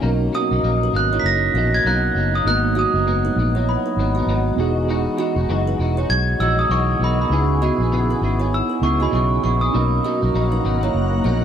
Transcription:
0.01 B1 B2 F#3 A#3 C#4 D#4 F#4
0.06 A#4
0.32 B2 F#3 A#3 D#4 F#4 D#5 D#6
0.51 B1 F#3 A#3 D#4
0.63 A#1 F#3 A#3 D#4
0.83 D#4 B4
0.93 G#1 B2 F#3 A#3 D#4 F#6
1.12 F#3 A#3 D#4 E4 C#5
1.20 F#1 B6
1.26 A#6
1.54 A#1 B2 F#3 A#3 D#4 F#4 D#5
1.74 F#3 A#3 D#4 G#6
1.85 B1 B2 F#3 A#3 D#4 F#6
2.15 F#1 B2 F#3 A#3 D#4
2.34 F#3 A#3 D#4 D#6
2.43 G#1 G#2 F#3 A#3 B3 D#4 F#4
2.47 A#3 B3 D#4 F#6
2.75 G#2 F#3 B3 D#4 F#4 D#5 D#6
2.94 F#1 F#3 B3 D#4
3.07 G#2 F#3 B3 D#4
3.25 D#4 B4
3.36 A#1 G#2 F#3 B3 D#4
3.55 F#3 B3 D#4 E4 C#5
3.69 B5
3.86 D#4 B4
3.97 G#1 G#2 F#3 B3 D#4
4.15 B3 D#4 F#4 D#5
4.19 F#3
4.26 G#1 G#2 F#3 B3 D#4
4.56 E1 E3 G#3 B3 D#4 F#4
4.60 F#4 G#4
4.89 E3 G#3 D#4 F#4
5.18 E3 G#3 D#4 F#4 D#5
5.36 E1 G#3 D#4 F#4
5.49 F#1 E3 G#3 D#4 F#4
5.67 D#4 B4
5.79 E1 E3 G#3 D#4 F#4
5.97 G#3 D#4 E4 F#4 C#5
6.10 B1 G#6
6.40 A#1 E3 G#3 D#4 F#4 D#5 E6
6.58 G#3 D#4 F#4 D#6
6.69 B1 E3 G#3 D#4 F#4 C#6
6.99 B1 E3 G#3 B3 D#4 F#4 A#4
7.04 B5
7.19 G#3 D#4 F#4 B5
7.28 C#2 C#3 B3 D#4 E4
7.33 E4 G#4
7.62 C#3 B3 E4 F#4 G#4 D#5
7.78 A#1 B3 E4 G#4
7.92 C#3 B3 E4 G#4
8.10 D#4 B4
8.21 G#1 C#3 B3 E4 G#4
8.40 B3 E4 G#4 C#5
8.54 E6
8.70 D#4 B4
8.81 C#2 C#3 B3 D#4 E4 G#4 C#6
9.00 B3 E4 F#4 G#4 D#5 B5
9.11 B1 C#3 B3 E4 G#4 C#6
9.43 A#1 C#3 B3 E4 G#4 C#6
9.61 B3 E4 G#4 D#6
9.71 B1 B2 F#3 A#3 C#4 D#4 F#4 A#5
9.75 A#3 D#4 A#4 F#5
10.04 B2 F#3 A#3 D#4 F#4 D#5
10.22 B1 F#3 A#3 D#4
10.34 A#1 F#3 A#3 D#4
10.52 D#4 B4
10.64 G#1 B2 F#3 A#3 D#4
10.81 F#3 A#3 D#4 E4 C#5
10.94 F#1
11.24 A#1 B2 F#3 A#3 D#4 F#4 D#5

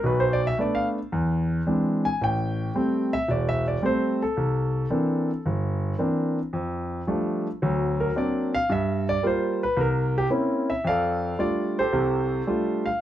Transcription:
0.03 B1 B2 B4
0.20 C5
0.33 D5
0.47 E5
0.58 A3 B3 D4 D5
0.75 F5
1.12 E2
1.66 E3 G#3 C4 D4
2.05 G#5
2.21 A1 G5
2.75 G3 A3 C4
3.13 E5
3.28 E1 D5
3.49 E5
3.68 D5
3.82 G3 A3 C4 C5
4.22 A4
4.37 C2
4.90 E3 A#3 C4 D4
5.46 G1
5.99 E3 A#3 C4 D4
6.53 F2
7.07 F3 G3 A3 D4
7.62 D2 F#3
8.00 A#4
8.15 F#3 A#3 C4 D4 D5
8.54 F5
8.69 G2 E5
9.09 D5
9.23 G3 A#3 F4 C5
9.63 B4
9.77 C2
9.81 A#4
10.18 G4
10.30 A#3 C4 C#4 E4
10.70 E5
10.84 F2 F5
10.88 A4 D5
11.39 G3 A3 D4 F4 D5
11.79 G4 A4 C5
11.93 C2 C3
12.47 G3 A3 D4 F4
12.86 F5

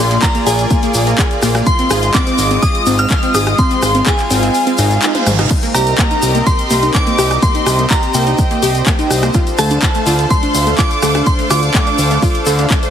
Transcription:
Already playing: A#3 F4 G#4 D5 C6
0.00 A#1
0.10 A#3, closed hi-hat, shaker
0.22 A#5, kick, clap, closed hi-hat, shaker
0.35 A#3, closed hi-hat, shaker
0.46 A#1 G#4 G#5, open hi-hat, shaker
0.58 closed hi-hat, shaker
0.70 A#3, kick, closed hi-hat, shaker
0.83 A#3, closed hi-hat, shaker
0.94 A#1, open hi-hat, shaker
1.07 A#3, closed hi-hat, shaker
1.18 G#4, kick, clap, closed hi-hat, shaker
1.31 closed hi-hat, shaker
1.42 A#1 A#3, cross-stick, open hi-hat, shaker
1.55 A#3, cross-stick, closed hi-hat, shaker
1.66 G#3 D#5 C6, kick, closed hi-hat, shaker
1.79 C4, closed hi-hat, shaker
1.90 G#1 G#4, cross-stick, open hi-hat, shaker
2.03 closed hi-hat, shaker
2.14 C4 D6, kick, clap, closed hi-hat, shaker
2.26 C4, closed hi-hat, shaker
2.38 G#1, open hi-hat, shaker
2.51 C4, closed hi-hat, shaker
2.63 G#4 D#6, kick, closed hi-hat, shaker
2.75 closed hi-hat, shaker
2.86 G#1 C4, open hi-hat, shaker
2.98 C4 F6, closed hi-hat, shaker
3.10 kick, clap, closed hi-hat, shaker
3.23 C4, closed hi-hat, shaker
3.34 G#1 G#4 D#6, cross-stick, open hi-hat, shaker
3.46 cross-stick, closed hi-hat, shaker
3.58 C4 F5 C6, kick, closed hi-hat, shaker
3.71 C4, closed hi-hat, shaker
3.82 G#1, cross-stick, open hi-hat, shaker
3.95 C4, closed hi-hat, shaker
4.06 G#4 G#5, kick, clap, closed hi-hat, shaker
4.18 clap, closed hi-hat, shaker
4.30 G#1 C4, open hi-hat, shaker
4.43 C4, closed hi-hat, shaker
4.54 open hi-hat, reverse cymbal, shaker
4.67 C4, closed hi-hat, shaker
4.78 G#1 D#4, open hi-hat, shaker
4.91 closed hi-hat, shaker
5.02 D#4, clap, closed hi-hat, shaker
5.15 C5, closed hi-hat, high tom, shaker
5.26 G#1, cross-stick, open hi-hat, mid tom, shaker
5.39 D#4, cross-stick, closed hi-hat, mid tom, shaker
5.51 C4 G4 A#4 D#5, kick, closed hi-hat, crash, shaker
5.63 A#3, closed hi-hat, shaker
5.75 C2 G4 A#5, cross-stick, open hi-hat, shaker
5.87 closed hi-hat, shaker
5.98 A#3, kick, clap, closed hi-hat, shaker
6.11 D#4, closed hi-hat, shaker
6.22 C2, open hi-hat, shaker
6.35 A#3, closed hi-hat, shaker
6.46 G4 C6, kick, closed hi-hat, shaker
6.59 closed hi-hat, shaker
6.70 C2 A#3, open hi-hat, shaker
6.83 D#4, closed hi-hat, shaker
6.94 D6, kick, clap, closed hi-hat, shaker
7.07 A#3, closed hi-hat, shaker
7.18 C2 G4, cross-stick, open hi-hat, shaker
7.31 cross-stick, closed hi-hat, shaker
7.42 A#3 C5 C6, kick, closed hi-hat, shaker
7.55 D#4, closed hi-hat, shaker
7.66 C2, cross-stick, open hi-hat, shaker
7.79 A#3, closed hi-hat, shaker
7.90 G4 A#5, kick, clap, closed hi-hat, shaker
8.03 closed hi-hat, shaker
8.14 C2 A#3 G5, open hi-hat, shaker
8.27 D#4, closed hi-hat, shaker
8.38 kick, closed hi-hat, shaker
8.51 A#3, closed hi-hat, shaker
8.62 C2 G4, open hi-hat, shaker
8.75 closed hi-hat, shaker
8.86 A#3, kick, clap, closed hi-hat, shaker
8.99 D#4, closed hi-hat, shaker
9.10 C2, cross-stick, open hi-hat, shaker
9.23 A#3, cross-stick, closed hi-hat, shaker
9.34 D4 F4 A4 F5, kick, closed hi-hat, shaker
9.47 closed hi-hat, shaker
9.58 D2 A3 A5, cross-stick, open hi-hat, shaker
9.70 D4, closed hi-hat, shaker
9.82 kick, clap, closed hi-hat, shaker
9.95 A3, closed hi-hat, shaker
10.06 D2 F4, open hi-hat, shaker
10.19 closed hi-hat, shaker
10.30 A3 C6, kick, closed hi-hat, shaker
10.43 D4, closed hi-hat, shaker
10.55 D2, open hi-hat, shaker
10.67 A3, closed hi-hat, shaker
10.78 F4 D6, kick, clap, closed hi-hat, shaker
10.91 closed hi-hat, shaker
11.02 D2 A3, cross-stick, open hi-hat, shaker
11.15 D4, cross-stick, closed hi-hat, shaker
11.26 C6, kick, closed hi-hat, shaker
11.39 A3, closed hi-hat, shaker
11.50 D2 F4 D6, cross-stick, open hi-hat, shaker
11.63 closed hi-hat, shaker
11.74 A3, kick, clap, closed hi-hat, shaker
11.87 D4, closed hi-hat, shaker
11.98 D2, open hi-hat, shaker
12.11 A3, closed hi-hat, shaker
12.22 F4, kick, open hi-hat, shaker
12.34 closed hi-hat, shaker
12.46 D2 A4, open hi-hat, shaker
12.58 D4, closed hi-hat, shaker
12.70 A3, kick, clap, closed hi-hat, shaker
12.83 C5, closed hi-hat, shaker

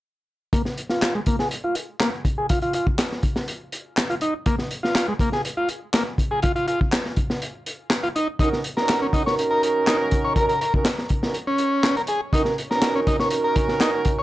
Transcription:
0.53 A#3, kick, closed hi-hat
0.65 snare
0.78 closed hi-hat
0.89 F4, snare
1.01 snare, clap, closed hi-hat
1.15 G#3
1.26 A#3, kick, closed hi-hat
1.39 G#4, snare
1.51 closed hi-hat
1.64 F4
1.75 closed hi-hat
2.00 A#3, snare, clap, closed hi-hat
2.25 kick, closed hi-hat
2.38 G#4
2.49 F4, kick, closed hi-hat
2.62 F4, closed hi-hat
2.73 F4, closed hi-hat
2.87 kick
2.98 snare, clap, closed hi-hat
3.12 snare
3.23 kick, closed hi-hat
3.36 snare
3.48 closed hi-hat
3.72 closed hi-hat
3.97 snare, clap, closed hi-hat
4.10 F4, closed hi-hat
4.21 D#4, closed hi-hat
4.46 A#3, kick, closed hi-hat
4.59 snare
4.71 closed hi-hat
4.83 F4, snare
4.95 snare, clap, closed hi-hat
5.08 G#3
5.19 A#3, kick, closed hi-hat
5.32 G#4, snare
5.45 closed hi-hat
5.57 F4
5.69 closed hi-hat
5.94 A#3, snare, clap, closed hi-hat
6.18 kick, closed hi-hat
6.31 G#4
6.42 F4, kick, closed hi-hat
6.56 F4, closed hi-hat
6.68 F4, closed hi-hat
6.81 kick
6.92 snare, clap, closed hi-hat
7.06 snare
7.16 kick, closed hi-hat
7.30 snare
7.42 closed hi-hat
7.66 closed hi-hat
7.90 snare, clap, closed hi-hat
8.03 F4, closed hi-hat
8.16 D#4, closed hi-hat
8.39 C#4 D#4 F#4 A#4, kick, closed hi-hat
8.53 snare
8.64 closed hi-hat
8.77 C#4 D#4 F#4 A#4, snare
8.89 snare, clap, closed hi-hat
9.02 C#4
9.13 D#4, kick, closed hi-hat
9.26 C#4 D#4 F#4 A#4 C#5, snare
9.39 closed hi-hat
9.51 A#4
9.63 closed hi-hat
9.87 D#4, snare, clap, closed hi-hat
10.11 kick, closed hi-hat
10.24 C#5
10.36 C#4 D#4 F#4 A#4, kick, closed hi-hat
10.49 A#4, closed hi-hat
10.61 A#4, closed hi-hat
10.74 C#4 D#4 F#4 A#4, kick
10.85 snare, clap, closed hi-hat
10.98 snare
11.09 kick, closed hi-hat
11.23 C#4 D#4 F#4 A#4, snare
11.34 closed hi-hat
11.47 C#4
11.58 closed hi-hat
11.83 snare, clap, closed hi-hat
11.97 A#4, closed hi-hat
12.07 G#4, closed hi-hat
12.33 C#4 D#4 F#4 A#4, kick, closed hi-hat
12.45 snare
12.58 closed hi-hat
12.71 C#4 D#4 F#4 A#4, snare
12.82 snare, clap, closed hi-hat
12.95 C#4
13.07 D#4, kick, closed hi-hat
13.19 C#4 D#4 F#4 A#4 C#5, snare
13.30 closed hi-hat
13.44 A#4
13.56 kick, closed hi-hat
13.68 snare
13.80 D#4, snare, clap, closed hi-hat
14.05 kick, closed hi-hat
14.19 C#5

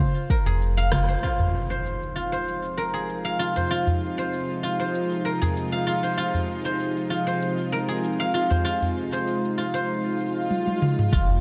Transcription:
Already playing: F4 G#4 C5
0.00 cabasa
0.17 cabasa
0.30 A#4, kick
0.46 F1 G#4, udu, cabasa
0.62 cabasa
0.77 F5, cabasa
0.92 F4, kick, cross-stick, low conga
1.09 C5, cabasa
1.23 C3 F3 G#3 D#4 F4, impact, cabasa
1.39 udu, cabasa
1.70 C5, cabasa
1.86 cabasa
2.02 cabasa
2.16 F4
2.32 C5, cabasa
2.48 cabasa
2.65 cabasa
2.78 A#4
2.94 G#4, cabasa
3.09 cabasa
3.25 F5, cabasa
3.39 F4
3.56 C5, udu, cabasa
3.71 F4, cabasa
3.87 udu, cabasa
4.18 C5, cabasa
4.33 cabasa
4.50 cabasa
4.63 F4
4.80 C5, cabasa
4.95 cabasa
5.11 cabasa
5.25 A#4
5.42 G#4, udu, cabasa
5.57 cabasa
5.72 F5, cabasa
5.87 F4
6.03 C5, cabasa
6.18 F4, cabasa
6.34 udu, cabasa
6.65 C5, cabasa
6.80 cabasa
6.97 cabasa
7.10 F4
7.27 C5, cabasa
7.42 cabasa
7.59 cabasa
7.72 A#4
7.89 G#4, cabasa
8.04 cabasa
8.20 F5, cabasa
8.34 F4
8.50 C5, udu, cabasa
8.65 F4, cabasa
8.82 udu, cabasa
9.12 C5, cabasa
9.27 cabasa
9.45 cabasa
9.58 F4
9.74 C5, cabasa
9.89 swell
10.51 high tom
10.68 high tom
10.82 mid tom
10.99 mid tom
11.13 F1 C3 F3 G#3 D#4 F4, kick, impact, cabasa
11.30 udu, cabasa

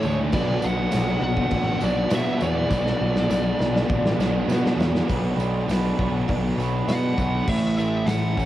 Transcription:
Already playing: A2 E3 A3 C#4 E4 A4 C#5
0.02 D2 E3 A3, tambourine
0.06 C#4 A4
0.18 E3 A3 C#4 A4
0.22 A3
0.32 B1 B2 F#3 B3 D4 D5, kick, tambourine, crash
0.37 B3 F#4
0.62 B1 B2 F#3 B3 D4 F#4 F#5, tambourine
0.77 F#3 B3
0.91 B1 B2 F#3 B3 D4, snare, tambourine, crash
0.95 B3 D4 F#4
1.07 B3 D4 F#4
1.21 B1 B2 F#3 B3 F#5, muted overdriven electric guitar stroke
1.36 F#3 B3 D4 F#4, kick
1.50 A1 D4, kick, tambourine, crash
1.67 F#3 B3
1.80 B1 B2 F#3 B3 D4 F#4, tambourine
1.84 B2 F#3 B3 D5
1.97 F#3 B3
2.09 B2 F#3 B3 D4 F#4, snare, tambourine, crash
2.14 B3 E5
2.23 B3 D4 F#4
2.29 F#3
2.39 E2 F#3 B3 D4 F#4, tambourine
2.43 D5
2.54 B3 D4 F#4
2.59 F#3
2.69 B1 B2 F#3 B3 D4 F#4, kick, snare, tambourine
2.74 B3
2.86 snare
2.98 B1 B2 F#3 B3 D4 F#4
3.04 B3
3.16 F#3 B3, snare
3.28 B1 B2 F#3 B3 D4 F#4, snare, tambourine
3.33 F#3 B3
3.43 B3 D4 F#4
3.59 B1 B2 B3, muted overdriven electric guitar stroke, snare, tambourine
3.63 F#3 B3
3.73 B3 D4 F#4, snare
3.79 F#3
3.88 A1 D4, kick, tambourine
4.05 F#3 B3, snare
4.18 B1 B2 F#3 B3 D4 F#4, snare, tambourine
4.22 B2 B3
4.34 F#3 B3
4.48 B2 F#3 B3 D4 F#4, snare, tambourine
4.52 F#4
4.64 F#3 B3 D4 F#4, snare
4.76 E2 F#3 B3, tambourine
4.81 D4 F#4, snare
4.94 F#3 B3 D4 F#4, snare
5.08 B1 B2 F#3 B3 D4 F#4 B4, kick, open hi-hat, tambourine
5.12 B3
5.37 B1 B3 D4, tambourine
5.43 F#3
5.68 B1 B2 F#3 B3 D4 F#4, snare, open hi-hat, tambourine
5.72 B3 B4
5.98 B1 F#3 B3 C#5, kick
6.28 B1 B2 F#3 B3 D4 F#4 B4, kick, open hi-hat, tambourine
6.58 B1 F#3 B3 F#4 B4 C#5, tambourine
6.62 B3 D4
6.88 B2 F#3 F#4 F#5, snare, open hi-hat, tambourine
6.92 B3
7.17 B1 F#3 B3 D4 F#4 B4 C#5, kick, tambourine
7.22 B3
7.48 A1 A2 C#4 E5, kick, crash, tambourine
7.78 E3 A3 C#4 E5, tambourine
8.06 A1 E3 C#4 E4 F#5, snare, open hi-hat, tambourine
8.37 A1 A3 C#4, kick, tambourine

